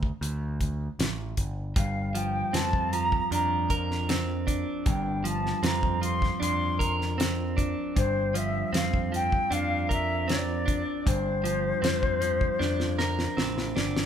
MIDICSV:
0, 0, Header, 1, 5, 480
1, 0, Start_track
1, 0, Tempo, 774194
1, 1094, Time_signature, 4, 2, 24, 8
1, 8715, End_track
2, 0, Start_track
2, 0, Title_t, "Flute"
2, 0, Program_c, 0, 73
2, 1099, Note_on_c, 0, 77, 78
2, 1337, Note_on_c, 0, 79, 80
2, 1346, Note_off_c, 0, 77, 0
2, 1579, Note_on_c, 0, 81, 97
2, 1589, Note_off_c, 0, 79, 0
2, 1811, Note_on_c, 0, 82, 104
2, 1820, Note_off_c, 0, 81, 0
2, 2052, Note_off_c, 0, 82, 0
2, 2060, Note_on_c, 0, 82, 86
2, 2392, Note_off_c, 0, 82, 0
2, 3023, Note_on_c, 0, 79, 70
2, 3266, Note_on_c, 0, 81, 74
2, 3275, Note_off_c, 0, 79, 0
2, 3494, Note_off_c, 0, 81, 0
2, 3498, Note_on_c, 0, 82, 84
2, 3719, Note_off_c, 0, 82, 0
2, 3737, Note_on_c, 0, 84, 107
2, 3959, Note_off_c, 0, 84, 0
2, 3973, Note_on_c, 0, 84, 100
2, 4309, Note_off_c, 0, 84, 0
2, 4935, Note_on_c, 0, 72, 87
2, 5184, Note_on_c, 0, 76, 83
2, 5193, Note_off_c, 0, 72, 0
2, 5413, Note_off_c, 0, 76, 0
2, 5417, Note_on_c, 0, 77, 93
2, 5639, Note_off_c, 0, 77, 0
2, 5667, Note_on_c, 0, 79, 98
2, 5904, Note_on_c, 0, 77, 102
2, 5913, Note_off_c, 0, 79, 0
2, 6139, Note_off_c, 0, 77, 0
2, 6151, Note_on_c, 0, 76, 93
2, 6367, Note_off_c, 0, 76, 0
2, 6388, Note_on_c, 0, 74, 94
2, 6864, Note_on_c, 0, 72, 86
2, 6873, Note_off_c, 0, 74, 0
2, 8298, Note_off_c, 0, 72, 0
2, 8715, End_track
3, 0, Start_track
3, 0, Title_t, "Clean electric guitar"
3, 0, Program_c, 1, 27
3, 1091, Note_on_c, 1, 43, 61
3, 1331, Note_on_c, 1, 53, 70
3, 1570, Note_on_c, 1, 60, 68
3, 1814, Note_off_c, 1, 53, 0
3, 1817, Note_on_c, 1, 53, 59
3, 2058, Note_on_c, 1, 62, 65
3, 2292, Note_off_c, 1, 43, 0
3, 2295, Note_on_c, 1, 70, 66
3, 2533, Note_off_c, 1, 60, 0
3, 2536, Note_on_c, 1, 60, 62
3, 2767, Note_off_c, 1, 62, 0
3, 2770, Note_on_c, 1, 62, 62
3, 3012, Note_on_c, 1, 43, 62
3, 3030, Note_off_c, 1, 53, 0
3, 3248, Note_on_c, 1, 53, 76
3, 3487, Note_off_c, 1, 60, 0
3, 3489, Note_on_c, 1, 60, 69
3, 3508, Note_off_c, 1, 70, 0
3, 3727, Note_off_c, 1, 53, 0
3, 3729, Note_on_c, 1, 53, 60
3, 3964, Note_off_c, 1, 62, 0
3, 3967, Note_on_c, 1, 62, 65
3, 4211, Note_on_c, 1, 70, 70
3, 4213, Note_off_c, 1, 43, 0
3, 4449, Note_off_c, 1, 60, 0
3, 4451, Note_on_c, 1, 60, 65
3, 4688, Note_off_c, 1, 62, 0
3, 4691, Note_on_c, 1, 62, 64
3, 4934, Note_on_c, 1, 43, 65
3, 4953, Note_off_c, 1, 53, 0
3, 5173, Note_on_c, 1, 53, 79
3, 5408, Note_off_c, 1, 60, 0
3, 5410, Note_on_c, 1, 60, 67
3, 5429, Note_off_c, 1, 70, 0
3, 5647, Note_off_c, 1, 53, 0
3, 5655, Note_on_c, 1, 53, 64
3, 5891, Note_off_c, 1, 62, 0
3, 5893, Note_on_c, 1, 62, 69
3, 6132, Note_on_c, 1, 70, 62
3, 6135, Note_off_c, 1, 43, 0
3, 6364, Note_off_c, 1, 60, 0
3, 6372, Note_on_c, 1, 60, 64
3, 6599, Note_off_c, 1, 62, 0
3, 6607, Note_on_c, 1, 62, 62
3, 6855, Note_off_c, 1, 53, 0
3, 6856, Note_on_c, 1, 43, 65
3, 7091, Note_on_c, 1, 53, 75
3, 7320, Note_off_c, 1, 60, 0
3, 7328, Note_on_c, 1, 60, 62
3, 7333, Note_off_c, 1, 70, 0
3, 7563, Note_off_c, 1, 53, 0
3, 7570, Note_on_c, 1, 53, 66
3, 7800, Note_off_c, 1, 62, 0
3, 7808, Note_on_c, 1, 62, 74
3, 8051, Note_on_c, 1, 70, 73
3, 8054, Note_off_c, 1, 43, 0
3, 8282, Note_off_c, 1, 60, 0
3, 8289, Note_on_c, 1, 60, 57
3, 8522, Note_off_c, 1, 62, 0
3, 8529, Note_on_c, 1, 62, 52
3, 8715, Note_off_c, 1, 53, 0
3, 8715, Note_off_c, 1, 60, 0
3, 8715, Note_off_c, 1, 62, 0
3, 8715, Note_off_c, 1, 70, 0
3, 8715, End_track
4, 0, Start_track
4, 0, Title_t, "Picked electric bass"
4, 0, Program_c, 2, 34
4, 0, Note_on_c, 2, 38, 69
4, 63, Note_off_c, 2, 38, 0
4, 132, Note_on_c, 2, 38, 78
4, 540, Note_off_c, 2, 38, 0
4, 615, Note_on_c, 2, 33, 82
4, 831, Note_off_c, 2, 33, 0
4, 853, Note_on_c, 2, 31, 66
4, 1070, Note_off_c, 2, 31, 0
4, 1093, Note_on_c, 2, 31, 93
4, 1500, Note_off_c, 2, 31, 0
4, 1573, Note_on_c, 2, 41, 75
4, 1981, Note_off_c, 2, 41, 0
4, 2054, Note_on_c, 2, 41, 87
4, 2869, Note_off_c, 2, 41, 0
4, 3015, Note_on_c, 2, 31, 91
4, 3422, Note_off_c, 2, 31, 0
4, 3489, Note_on_c, 2, 41, 77
4, 3898, Note_off_c, 2, 41, 0
4, 3979, Note_on_c, 2, 41, 82
4, 4793, Note_off_c, 2, 41, 0
4, 4941, Note_on_c, 2, 31, 88
4, 5346, Note_off_c, 2, 31, 0
4, 5412, Note_on_c, 2, 41, 72
4, 5821, Note_off_c, 2, 41, 0
4, 5896, Note_on_c, 2, 41, 78
4, 6711, Note_off_c, 2, 41, 0
4, 6861, Note_on_c, 2, 31, 96
4, 7266, Note_off_c, 2, 31, 0
4, 7332, Note_on_c, 2, 41, 80
4, 7740, Note_off_c, 2, 41, 0
4, 7813, Note_on_c, 2, 41, 83
4, 8220, Note_off_c, 2, 41, 0
4, 8292, Note_on_c, 2, 33, 73
4, 8508, Note_off_c, 2, 33, 0
4, 8538, Note_on_c, 2, 31, 69
4, 8715, Note_off_c, 2, 31, 0
4, 8715, End_track
5, 0, Start_track
5, 0, Title_t, "Drums"
5, 16, Note_on_c, 9, 36, 83
5, 78, Note_off_c, 9, 36, 0
5, 140, Note_on_c, 9, 42, 72
5, 202, Note_off_c, 9, 42, 0
5, 375, Note_on_c, 9, 42, 58
5, 376, Note_on_c, 9, 36, 72
5, 437, Note_off_c, 9, 42, 0
5, 438, Note_off_c, 9, 36, 0
5, 617, Note_on_c, 9, 42, 78
5, 623, Note_on_c, 9, 38, 106
5, 679, Note_off_c, 9, 42, 0
5, 685, Note_off_c, 9, 38, 0
5, 851, Note_on_c, 9, 42, 62
5, 853, Note_on_c, 9, 36, 72
5, 913, Note_off_c, 9, 42, 0
5, 915, Note_off_c, 9, 36, 0
5, 1092, Note_on_c, 9, 36, 117
5, 1092, Note_on_c, 9, 42, 87
5, 1154, Note_off_c, 9, 36, 0
5, 1154, Note_off_c, 9, 42, 0
5, 1334, Note_on_c, 9, 42, 59
5, 1396, Note_off_c, 9, 42, 0
5, 1576, Note_on_c, 9, 42, 82
5, 1581, Note_on_c, 9, 38, 93
5, 1638, Note_off_c, 9, 42, 0
5, 1643, Note_off_c, 9, 38, 0
5, 1694, Note_on_c, 9, 36, 81
5, 1756, Note_off_c, 9, 36, 0
5, 1816, Note_on_c, 9, 42, 55
5, 1878, Note_off_c, 9, 42, 0
5, 1935, Note_on_c, 9, 36, 75
5, 1997, Note_off_c, 9, 36, 0
5, 2058, Note_on_c, 9, 42, 67
5, 2120, Note_off_c, 9, 42, 0
5, 2294, Note_on_c, 9, 36, 79
5, 2294, Note_on_c, 9, 42, 58
5, 2356, Note_off_c, 9, 36, 0
5, 2356, Note_off_c, 9, 42, 0
5, 2425, Note_on_c, 9, 38, 30
5, 2487, Note_off_c, 9, 38, 0
5, 2536, Note_on_c, 9, 42, 82
5, 2542, Note_on_c, 9, 38, 106
5, 2598, Note_off_c, 9, 42, 0
5, 2604, Note_off_c, 9, 38, 0
5, 2775, Note_on_c, 9, 36, 73
5, 2778, Note_on_c, 9, 42, 63
5, 2837, Note_off_c, 9, 36, 0
5, 2840, Note_off_c, 9, 42, 0
5, 3013, Note_on_c, 9, 42, 79
5, 3015, Note_on_c, 9, 36, 117
5, 3075, Note_off_c, 9, 42, 0
5, 3077, Note_off_c, 9, 36, 0
5, 3256, Note_on_c, 9, 42, 63
5, 3318, Note_off_c, 9, 42, 0
5, 3385, Note_on_c, 9, 38, 33
5, 3447, Note_off_c, 9, 38, 0
5, 3494, Note_on_c, 9, 42, 78
5, 3499, Note_on_c, 9, 38, 98
5, 3556, Note_off_c, 9, 42, 0
5, 3561, Note_off_c, 9, 38, 0
5, 3614, Note_on_c, 9, 36, 83
5, 3676, Note_off_c, 9, 36, 0
5, 3738, Note_on_c, 9, 42, 56
5, 3800, Note_off_c, 9, 42, 0
5, 3857, Note_on_c, 9, 36, 89
5, 3863, Note_on_c, 9, 38, 32
5, 3919, Note_off_c, 9, 36, 0
5, 3925, Note_off_c, 9, 38, 0
5, 3984, Note_on_c, 9, 42, 80
5, 4046, Note_off_c, 9, 42, 0
5, 4218, Note_on_c, 9, 36, 79
5, 4223, Note_on_c, 9, 42, 60
5, 4280, Note_off_c, 9, 36, 0
5, 4285, Note_off_c, 9, 42, 0
5, 4348, Note_on_c, 9, 38, 30
5, 4410, Note_off_c, 9, 38, 0
5, 4463, Note_on_c, 9, 42, 83
5, 4469, Note_on_c, 9, 38, 107
5, 4525, Note_off_c, 9, 42, 0
5, 4531, Note_off_c, 9, 38, 0
5, 4699, Note_on_c, 9, 36, 82
5, 4703, Note_on_c, 9, 42, 59
5, 4761, Note_off_c, 9, 36, 0
5, 4765, Note_off_c, 9, 42, 0
5, 4938, Note_on_c, 9, 36, 110
5, 4939, Note_on_c, 9, 42, 92
5, 5000, Note_off_c, 9, 36, 0
5, 5001, Note_off_c, 9, 42, 0
5, 5179, Note_on_c, 9, 42, 69
5, 5241, Note_off_c, 9, 42, 0
5, 5421, Note_on_c, 9, 42, 86
5, 5426, Note_on_c, 9, 38, 113
5, 5483, Note_off_c, 9, 42, 0
5, 5488, Note_off_c, 9, 38, 0
5, 5540, Note_on_c, 9, 36, 85
5, 5602, Note_off_c, 9, 36, 0
5, 5667, Note_on_c, 9, 42, 49
5, 5729, Note_off_c, 9, 42, 0
5, 5781, Note_on_c, 9, 36, 83
5, 5843, Note_off_c, 9, 36, 0
5, 5901, Note_on_c, 9, 42, 70
5, 5963, Note_off_c, 9, 42, 0
5, 6143, Note_on_c, 9, 36, 73
5, 6146, Note_on_c, 9, 42, 56
5, 6205, Note_off_c, 9, 36, 0
5, 6208, Note_off_c, 9, 42, 0
5, 6382, Note_on_c, 9, 42, 68
5, 6388, Note_on_c, 9, 38, 100
5, 6444, Note_off_c, 9, 42, 0
5, 6450, Note_off_c, 9, 38, 0
5, 6621, Note_on_c, 9, 36, 85
5, 6623, Note_on_c, 9, 42, 52
5, 6683, Note_off_c, 9, 36, 0
5, 6685, Note_off_c, 9, 42, 0
5, 6861, Note_on_c, 9, 36, 116
5, 6863, Note_on_c, 9, 42, 84
5, 6923, Note_off_c, 9, 36, 0
5, 6925, Note_off_c, 9, 42, 0
5, 7102, Note_on_c, 9, 42, 59
5, 7164, Note_off_c, 9, 42, 0
5, 7339, Note_on_c, 9, 42, 77
5, 7345, Note_on_c, 9, 38, 96
5, 7401, Note_off_c, 9, 42, 0
5, 7407, Note_off_c, 9, 38, 0
5, 7458, Note_on_c, 9, 36, 83
5, 7520, Note_off_c, 9, 36, 0
5, 7575, Note_on_c, 9, 42, 49
5, 7637, Note_off_c, 9, 42, 0
5, 7695, Note_on_c, 9, 36, 84
5, 7757, Note_off_c, 9, 36, 0
5, 7818, Note_on_c, 9, 38, 50
5, 7880, Note_off_c, 9, 38, 0
5, 7936, Note_on_c, 9, 38, 48
5, 7998, Note_off_c, 9, 38, 0
5, 8053, Note_on_c, 9, 38, 70
5, 8115, Note_off_c, 9, 38, 0
5, 8176, Note_on_c, 9, 38, 55
5, 8238, Note_off_c, 9, 38, 0
5, 8297, Note_on_c, 9, 38, 81
5, 8359, Note_off_c, 9, 38, 0
5, 8418, Note_on_c, 9, 38, 58
5, 8480, Note_off_c, 9, 38, 0
5, 8535, Note_on_c, 9, 38, 89
5, 8597, Note_off_c, 9, 38, 0
5, 8658, Note_on_c, 9, 38, 85
5, 8715, Note_off_c, 9, 38, 0
5, 8715, End_track
0, 0, End_of_file